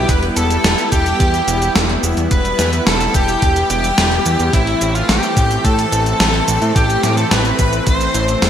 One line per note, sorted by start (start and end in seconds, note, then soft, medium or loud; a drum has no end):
0.00 4.49 G3 medium
0.00 4.49 B3 medium
0.00 4.49 E4 medium
0.09 0.30 E1 loud
0.09 0.21 B4 loud
0.09 0.16 B4 loud
0.09 kick loud
0.09 closed hi-hat loud
0.09 cabasa soft
0.23 closed hi-hat soft
0.36 0.58 E1 loud
0.36 0.88 A4 loud
0.36 closed hi-hat medium
0.36 cabasa medium
0.50 closed hi-hat soft
0.50 cabasa soft
0.64 0.75 E1 medium
0.64 snare loud
0.64 closed hi-hat loud
0.64 cabasa soft
0.78 closed hi-hat soft
0.78 cabasa soft
0.92 1.14 E1 medium
0.92 1.71 G4 medium
0.92 1.72 G4 medium
0.92 kick loud
0.92 closed hi-hat medium
0.92 cabasa medium
1.06 closed hi-hat soft
1.06 cabasa soft
1.20 1.42 E2 medium
1.20 kick loud
1.20 closed hi-hat medium
1.20 cabasa soft
1.34 closed hi-hat soft
1.34 cabasa soft
1.48 1.69 E1 loud
1.48 closed hi-hat medium
1.48 cabasa medium
1.62 closed hi-hat soft
1.62 cabasa soft
1.75 1.97 E1 loud
1.75 snare loud
1.75 closed hi-hat medium
1.75 cabasa soft
1.90 closed hi-hat soft
2.03 2.14 E1 medium
2.03 closed hi-hat soft
2.03 cabasa medium
2.17 2.28 E2 medium
2.17 closed hi-hat soft
2.17 cabasa soft
2.31 2.53 E1 medium
2.31 2.83 B4 loud
2.31 kick loud
2.31 closed hi-hat loud
2.31 cabasa soft
2.45 closed hi-hat soft
2.45 cabasa soft
2.59 2.81 E2 medium
2.59 snare medium
2.59 closed hi-hat medium
2.59 cabasa medium
2.73 closed hi-hat soft
2.73 cabasa soft
2.87 3.08 E1 loud
2.87 3.15 A4 medium
2.87 3.16 A4 loud
2.87 snare loud
2.87 closed hi-hat medium
2.87 cabasa soft
3.01 closed hi-hat soft
3.01 cabasa soft
3.14 3.36 E1 medium
3.14 3.66 G4 loud
3.14 kick loud
3.14 closed hi-hat medium
3.14 cabasa medium
3.28 closed hi-hat soft
3.28 cabasa soft
3.42 3.64 E1 medium
3.42 kick loud
3.42 closed hi-hat medium
3.42 cabasa soft
3.56 closed hi-hat soft
3.56 cabasa soft
3.70 3.92 E1 loud
3.70 4.53 G4 medium
3.70 4.56 G4 loud
3.70 closed hi-hat medium
3.70 cabasa medium
3.84 closed hi-hat soft
3.84 cabasa soft
3.98 4.19 E1 medium
3.98 snare loud
3.98 closed hi-hat medium
3.98 cabasa soft
4.12 closed hi-hat soft
4.26 4.37 E2 loud
4.26 closed hi-hat soft
4.26 cabasa medium
4.40 4.50 E2 medium
4.40 closed hi-hat soft
4.40 cabasa soft
4.53 4.75 A1 loud
4.53 8.50 E3 medium
4.53 8.50 A3 medium
4.53 8.50 C4 medium
4.53 4.96 E4 loud
4.53 4.95 E4 medium
4.53 kick loud
4.53 closed hi-hat medium
4.53 cabasa soft
4.67 closed hi-hat soft
4.81 5.03 A1 loud
4.81 closed hi-hat medium
4.81 cabasa medium
4.95 5.09 F4 medium
4.95 closed hi-hat soft
4.95 cabasa soft
5.09 5.20 A1 medium
5.09 5.66 G4 loud
5.09 5.64 G4 medium
5.09 snare loud
5.09 closed hi-hat medium
5.09 cabasa soft
5.23 closed hi-hat soft
5.23 cabasa soft
5.37 5.58 A1 medium
5.37 kick loud
5.37 closed hi-hat medium
5.37 cabasa medium
5.51 closed hi-hat soft
5.51 cabasa soft
5.65 5.86 A2 medium
5.65 5.91 A4 loud
5.65 kick loud
5.65 closed hi-hat medium
5.65 cabasa soft
5.79 closed hi-hat soft
5.79 cabasa soft
5.92 6.14 A1 loud
5.92 6.76 A4 loud
5.92 6.78 A4 loud
5.92 closed hi-hat medium
5.92 cabasa medium
6.06 closed hi-hat soft
6.06 cabasa soft
6.20 6.42 A1 loud
6.20 snare loud
6.20 closed hi-hat medium
6.20 cabasa soft
6.34 closed hi-hat soft
6.48 6.59 A1 medium
6.48 closed hi-hat soft
6.48 cabasa medium
6.62 6.73 A2 medium
6.62 closed hi-hat soft
6.62 cabasa soft
6.76 6.97 A1 medium
6.76 7.15 G4 loud
6.76 kick loud
6.76 closed hi-hat medium
6.76 cabasa soft
6.90 closed hi-hat soft
6.90 cabasa soft
7.03 7.25 A2 medium
7.03 snare medium
7.03 closed hi-hat medium
7.03 cabasa medium
7.17 7.32 A4 loud
7.17 closed hi-hat soft
7.17 cabasa soft
7.31 7.53 A1 loud
7.31 7.83 B4 loud
7.31 snare loud
7.31 closed hi-hat medium
7.31 cabasa soft
7.45 closed hi-hat soft
7.45 cabasa soft
7.59 7.81 A1 medium
7.59 kick loud
7.59 closed hi-hat medium
7.59 cabasa medium
7.73 closed hi-hat soft
7.73 cabasa soft
7.87 8.08 A1 medium
7.87 8.50 C5 loud
7.87 kick loud
7.87 closed hi-hat medium
7.87 cabasa soft
8.01 closed hi-hat soft
8.01 cabasa soft
8.14 8.36 A1 loud
8.14 closed hi-hat medium
8.14 cabasa medium
8.28 closed hi-hat soft
8.28 cabasa soft
8.42 8.50 E1 loud
8.42 snare loud
8.42 closed hi-hat medium
8.42 cabasa soft